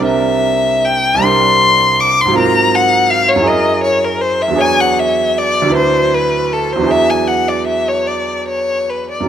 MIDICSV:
0, 0, Header, 1, 3, 480
1, 0, Start_track
1, 0, Tempo, 798935
1, 31, Time_signature, 6, 3, 24, 8
1, 992, Tempo, 733496
1, 2432, Tempo, 761421
1, 4352, Tempo, 791557
1, 5312, Tempo, 855920
1, 5763, End_track
2, 0, Start_track
2, 0, Title_t, "Violin"
2, 0, Program_c, 0, 40
2, 30, Note_on_c, 0, 76, 95
2, 512, Note_on_c, 0, 79, 103
2, 521, Note_off_c, 0, 76, 0
2, 743, Note_on_c, 0, 84, 104
2, 752, Note_off_c, 0, 79, 0
2, 1223, Note_on_c, 0, 86, 104
2, 1232, Note_off_c, 0, 84, 0
2, 1357, Note_on_c, 0, 84, 96
2, 1367, Note_off_c, 0, 86, 0
2, 1470, Note_off_c, 0, 84, 0
2, 1474, Note_on_c, 0, 82, 108
2, 1711, Note_on_c, 0, 78, 104
2, 1720, Note_off_c, 0, 82, 0
2, 1942, Note_on_c, 0, 77, 105
2, 1952, Note_off_c, 0, 78, 0
2, 2062, Note_on_c, 0, 73, 97
2, 2072, Note_off_c, 0, 77, 0
2, 2183, Note_on_c, 0, 75, 101
2, 2193, Note_off_c, 0, 73, 0
2, 2419, Note_off_c, 0, 75, 0
2, 2423, Note_on_c, 0, 73, 96
2, 2553, Note_on_c, 0, 70, 87
2, 2562, Note_off_c, 0, 73, 0
2, 2661, Note_on_c, 0, 72, 96
2, 2670, Note_off_c, 0, 70, 0
2, 2793, Note_on_c, 0, 76, 92
2, 2802, Note_off_c, 0, 72, 0
2, 2909, Note_on_c, 0, 80, 112
2, 2919, Note_off_c, 0, 76, 0
2, 3033, Note_on_c, 0, 78, 97
2, 3042, Note_off_c, 0, 80, 0
2, 3150, Note_on_c, 0, 76, 97
2, 3159, Note_off_c, 0, 78, 0
2, 3395, Note_on_c, 0, 74, 102
2, 3405, Note_off_c, 0, 76, 0
2, 3635, Note_off_c, 0, 74, 0
2, 3638, Note_on_c, 0, 72, 100
2, 3877, Note_on_c, 0, 71, 95
2, 3886, Note_off_c, 0, 72, 0
2, 4120, Note_on_c, 0, 69, 91
2, 4129, Note_off_c, 0, 71, 0
2, 4246, Note_on_c, 0, 72, 88
2, 4255, Note_off_c, 0, 69, 0
2, 4359, Note_on_c, 0, 76, 110
2, 4368, Note_off_c, 0, 72, 0
2, 4475, Note_on_c, 0, 80, 93
2, 4484, Note_off_c, 0, 76, 0
2, 4580, Note_on_c, 0, 78, 91
2, 4589, Note_off_c, 0, 80, 0
2, 4706, Note_on_c, 0, 74, 82
2, 4716, Note_off_c, 0, 78, 0
2, 4819, Note_off_c, 0, 74, 0
2, 4823, Note_on_c, 0, 76, 89
2, 4950, Note_on_c, 0, 73, 85
2, 4959, Note_off_c, 0, 76, 0
2, 5064, Note_on_c, 0, 74, 76
2, 5073, Note_off_c, 0, 73, 0
2, 5311, Note_off_c, 0, 74, 0
2, 5314, Note_on_c, 0, 73, 83
2, 5545, Note_on_c, 0, 71, 75
2, 5553, Note_off_c, 0, 73, 0
2, 5664, Note_off_c, 0, 71, 0
2, 5667, Note_on_c, 0, 74, 64
2, 5763, Note_off_c, 0, 74, 0
2, 5763, End_track
3, 0, Start_track
3, 0, Title_t, "Grand piano"
3, 0, Program_c, 1, 0
3, 0, Control_c, 1, 64, 127
3, 0, Note_on_c, 1, 36, 60
3, 0, Note_on_c, 1, 55, 53
3, 0, Note_on_c, 1, 60, 56
3, 0, Note_on_c, 1, 62, 54
3, 12, Note_on_c, 1, 70, 53
3, 44, Control_c, 1, 64, 0
3, 134, Control_c, 1, 64, 127
3, 677, Note_off_c, 1, 36, 0
3, 686, Note_on_c, 1, 36, 74
3, 693, Note_off_c, 1, 55, 0
3, 702, Note_on_c, 1, 55, 62
3, 707, Note_off_c, 1, 60, 0
3, 716, Note_on_c, 1, 60, 61
3, 723, Note_off_c, 1, 62, 0
3, 730, Note_off_c, 1, 70, 0
3, 734, Note_on_c, 1, 62, 56
3, 745, Note_on_c, 1, 70, 55
3, 1387, Note_on_c, 1, 44, 69
3, 1404, Note_on_c, 1, 54, 55
3, 1414, Note_off_c, 1, 36, 0
3, 1414, Note_off_c, 1, 60, 0
3, 1423, Note_off_c, 1, 55, 0
3, 1423, Note_on_c, 1, 60, 58
3, 1438, Note_on_c, 1, 65, 64
3, 1441, Note_off_c, 1, 62, 0
3, 1444, Note_off_c, 1, 70, 0
3, 1453, Note_on_c, 1, 70, 62
3, 1489, Control_c, 1, 64, 0
3, 1586, Control_c, 1, 64, 127
3, 2108, Note_on_c, 1, 42, 72
3, 2112, Note_off_c, 1, 54, 0
3, 2122, Note_off_c, 1, 44, 0
3, 2122, Note_on_c, 1, 54, 59
3, 2141, Note_off_c, 1, 60, 0
3, 2142, Note_on_c, 1, 64, 61
3, 2149, Note_off_c, 1, 65, 0
3, 2154, Note_on_c, 1, 68, 59
3, 2156, Note_off_c, 1, 70, 0
3, 2176, Note_on_c, 1, 70, 62
3, 2202, Control_c, 1, 64, 0
3, 2310, Control_c, 1, 64, 127
3, 2828, Note_on_c, 1, 40, 64
3, 2836, Note_off_c, 1, 54, 0
3, 2845, Note_on_c, 1, 54, 58
3, 2846, Note_off_c, 1, 42, 0
3, 2859, Note_on_c, 1, 62, 54
3, 2863, Note_off_c, 1, 64, 0
3, 2866, Note_off_c, 1, 68, 0
3, 2876, Note_on_c, 1, 68, 52
3, 2880, Note_off_c, 1, 70, 0
3, 2893, Note_on_c, 1, 73, 60
3, 2919, Control_c, 1, 64, 0
3, 3005, Control_c, 1, 64, 127
3, 3544, Note_on_c, 1, 38, 67
3, 3553, Note_off_c, 1, 54, 0
3, 3562, Note_on_c, 1, 54, 56
3, 3568, Note_off_c, 1, 62, 0
3, 3571, Note_off_c, 1, 40, 0
3, 3577, Note_on_c, 1, 62, 56
3, 3595, Note_on_c, 1, 64, 61
3, 3596, Note_off_c, 1, 68, 0
3, 3605, Note_off_c, 1, 73, 0
3, 3609, Note_on_c, 1, 71, 55
3, 3647, Control_c, 1, 64, 0
3, 3734, Control_c, 1, 64, 127
3, 4264, Note_on_c, 1, 40, 68
3, 4269, Note_off_c, 1, 54, 0
3, 4279, Note_on_c, 1, 54, 59
3, 4284, Note_off_c, 1, 38, 0
3, 4287, Note_off_c, 1, 62, 0
3, 4296, Note_on_c, 1, 62, 55
3, 4302, Note_off_c, 1, 64, 0
3, 4311, Note_on_c, 1, 64, 58
3, 4318, Note_off_c, 1, 71, 0
3, 4332, Note_on_c, 1, 68, 54
3, 4361, Control_c, 1, 64, 0
3, 4479, Control_c, 1, 64, 127
3, 5717, Note_on_c, 1, 42, 52
3, 5723, Note_off_c, 1, 54, 0
3, 5731, Note_off_c, 1, 40, 0
3, 5732, Note_on_c, 1, 54, 45
3, 5746, Note_off_c, 1, 62, 0
3, 5752, Note_off_c, 1, 64, 0
3, 5762, Note_off_c, 1, 68, 0
3, 5763, Note_off_c, 1, 42, 0
3, 5763, Note_off_c, 1, 54, 0
3, 5763, End_track
0, 0, End_of_file